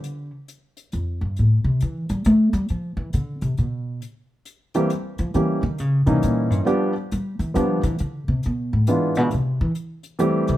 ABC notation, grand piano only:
X:1
M:3/4
L:1/8
Q:"Swing" 1/4=136
K:Gmix
V:1 name="Grand piano"
z6 | z6 | z6 | z3 [E,G,_B,CG] z2 |
[E,G,^A,^CG] z2 [E,G,A,C_E]3 | [F,G,B,DG] z3 [F,G,B,DG] z | z4 [E,^G,B,DF]2 | z4 [E,G,A,CG]2 |]